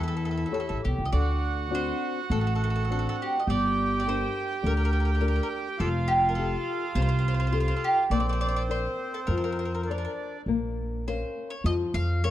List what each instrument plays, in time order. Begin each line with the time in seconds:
Already playing: upright bass E2, nylon-string guitar E3, accordion E4
0.03 mandolin A4
0.08 mandolin A4
0.17 mandolin A4
0.25 mandolin A4
0.31 mandolin A4
0.37 mandolin A4
0.46 mandolin A4
0.52 nylon-string guitar G4 A4 C#5, mandolin A4
0.60 mandolin A4
0.69 upright bass A1, mandolin A4
0.85 upright bass B1, mandolin G4
0.98 upright bass C#2
1.05 mandolin D#5
1.12 upright bass D2, nylon-string guitar D3, accordion F#4, mandolin D5
1.71 nylon-string guitar C4 D4 F#4
1.75 mandolin C5
2.30 upright bass A1, nylon-string guitar A3, mandolin A4
2.41 mandolin A4
2.47 mandolin A4
2.55 mandolin A4
2.64 mandolin A4
2.70 mandolin A4
2.76 mandolin A4
2.85 mandolin A4
2.89 nylon-string guitar C4 D4 F#4, mandolin A4
2.99 mandolin A4
3.09 mandolin A4
3.22 mandolin G4
3.40 mandolin D#5
3.47 upright bass G1, nylon-string guitar G3, accordion G4, mandolin D5
4.00 mandolin D5
4.06 nylon-string guitar D4 G4 A#4, mandolin C5
4.63 upright bass D2, nylon-string guitar D3, mandolin A#4
4.77 mandolin A#4
4.85 mandolin A#4
4.93 mandolin A#4
5.00 mandolin A#4
5.05 mandolin A#4
5.15 mandolin A#4
5.21 nylon-string guitar D4 G4 A#4, mandolin A#4
5.28 mandolin A#4
5.36 mandolin A#4
5.43 mandolin A#4
5.78 upright bass F1, nylon-string guitar F3, accordion F4, mandolin A4
6.08 mandolin G4
6.29 mandolin A#4
6.35 nylon-string guitar F4, mandolin A4
6.39 nylon-string guitar G4 A4
6.95 upright bass C2, nylon-string guitar C3, mandolin C5
7.02 mandolin C5
7.09 mandolin C5
7.19 mandolin C5
7.28 mandolin C5
7.34 mandolin C5
7.40 mandolin C5
7.47 mandolin C5
7.52 nylon-string guitar F4 G4 A4, mandolin C5
7.60 mandolin C5
7.68 mandolin C5
7.76 mandolin A4
7.84 mandolin G4
8.10 upright bass A#1, nylon-string guitar A#3, accordion C4, mandolin D5
8.20 mandolin D5
8.29 mandolin D5
8.41 mandolin D5
8.48 mandolin D5
8.56 mandolin D5
8.69 nylon-string guitar A#4 C5 D5, mandolin C5
9.14 mandolin A4
9.27 upright bass F2, nylon-string guitar F3, mandolin A#4
9.38 mandolin A#4
9.44 mandolin A#4
9.52 mandolin A#4
9.59 mandolin A#4
9.65 mandolin A#4
9.75 mandolin A#4
9.84 accordion D4, mandolin A#4
9.90 nylon-string guitar A#4 C5 D5, mandolin A#4
9.98 mandolin A#4
10.05 mandolin A#4
10.46 upright bass A#1, nylon-string guitar A#3
11.07 nylon-string guitar C#4 A#4 F5, mandolin C5
11.50 mandolin C#5
11.64 upright bass F2, nylon-string guitar F3, mandolin D#5
11.94 upright bass F2, mandolin F5
12.24 nylon-string guitar A#4 C#5 F5, mandolin C#5